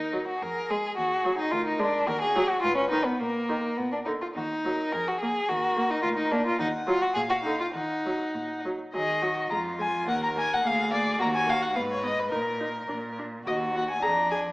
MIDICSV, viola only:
0, 0, Header, 1, 2, 480
1, 0, Start_track
1, 0, Key_signature, -6, "minor"
1, 0, Tempo, 556070
1, 846, Time_signature, 2, 2, 24, 8
1, 2279, Tempo, 573066
1, 4199, Tempo, 555556
1, 5639, Tempo, 583658
1, 8039, Tempo, 562852
1, 12307, End_track
2, 0, Start_track
2, 0, Title_t, "Viola"
2, 0, Program_c, 0, 41
2, 110, Note_on_c, 0, 54, 41
2, 230, Note_off_c, 0, 54, 0
2, 602, Note_on_c, 0, 56, 35
2, 716, Note_off_c, 0, 56, 0
2, 1075, Note_on_c, 0, 54, 50
2, 1187, Note_off_c, 0, 54, 0
2, 1545, Note_on_c, 0, 56, 50
2, 1662, Note_off_c, 0, 56, 0
2, 2031, Note_on_c, 0, 54, 62
2, 2145, Note_off_c, 0, 54, 0
2, 2515, Note_on_c, 0, 51, 48
2, 2627, Note_off_c, 0, 51, 0
2, 2992, Note_on_c, 0, 51, 45
2, 3107, Note_off_c, 0, 51, 0
2, 3475, Note_on_c, 0, 50, 37
2, 3590, Note_off_c, 0, 50, 0
2, 3962, Note_on_c, 0, 54, 44
2, 4072, Note_off_c, 0, 54, 0
2, 4446, Note_on_c, 0, 58, 43
2, 4556, Note_off_c, 0, 58, 0
2, 4917, Note_on_c, 0, 58, 51
2, 5029, Note_off_c, 0, 58, 0
2, 5394, Note_on_c, 0, 58, 55
2, 5507, Note_off_c, 0, 58, 0
2, 5862, Note_on_c, 0, 54, 58
2, 5974, Note_off_c, 0, 54, 0
2, 6343, Note_on_c, 0, 50, 39
2, 6455, Note_off_c, 0, 50, 0
2, 6838, Note_on_c, 0, 54, 39
2, 6951, Note_off_c, 0, 54, 0
2, 7326, Note_on_c, 0, 54, 34
2, 7438, Note_off_c, 0, 54, 0
2, 7561, Note_on_c, 0, 54, 47
2, 7627, Note_off_c, 0, 54, 0
2, 7795, Note_on_c, 0, 54, 42
2, 7860, Note_off_c, 0, 54, 0
2, 8034, Note_on_c, 0, 56, 45
2, 8102, Note_off_c, 0, 56, 0
2, 8271, Note_on_c, 0, 56, 41
2, 8339, Note_off_c, 0, 56, 0
2, 8514, Note_on_c, 0, 58, 54
2, 8582, Note_off_c, 0, 58, 0
2, 8756, Note_on_c, 0, 58, 50
2, 8824, Note_off_c, 0, 58, 0
2, 8998, Note_on_c, 0, 58, 52
2, 9066, Note_off_c, 0, 58, 0
2, 9234, Note_on_c, 0, 58, 46
2, 9302, Note_off_c, 0, 58, 0
2, 9475, Note_on_c, 0, 58, 61
2, 9543, Note_off_c, 0, 58, 0
2, 9702, Note_on_c, 0, 58, 52
2, 9770, Note_off_c, 0, 58, 0
2, 9951, Note_on_c, 0, 59, 50
2, 10019, Note_off_c, 0, 59, 0
2, 10185, Note_on_c, 0, 59, 40
2, 10253, Note_off_c, 0, 59, 0
2, 10419, Note_on_c, 0, 63, 49
2, 10487, Note_off_c, 0, 63, 0
2, 10666, Note_on_c, 0, 63, 44
2, 10734, Note_off_c, 0, 63, 0
2, 10908, Note_on_c, 0, 62, 39
2, 10976, Note_off_c, 0, 62, 0
2, 11168, Note_on_c, 0, 62, 32
2, 11236, Note_off_c, 0, 62, 0
2, 11404, Note_on_c, 0, 66, 46
2, 11472, Note_off_c, 0, 66, 0
2, 11652, Note_on_c, 0, 66, 44
2, 11720, Note_off_c, 0, 66, 0
2, 11883, Note_on_c, 0, 68, 48
2, 11952, Note_off_c, 0, 68, 0
2, 12125, Note_on_c, 0, 68, 45
2, 12193, Note_off_c, 0, 68, 0
2, 12307, End_track
0, 0, End_of_file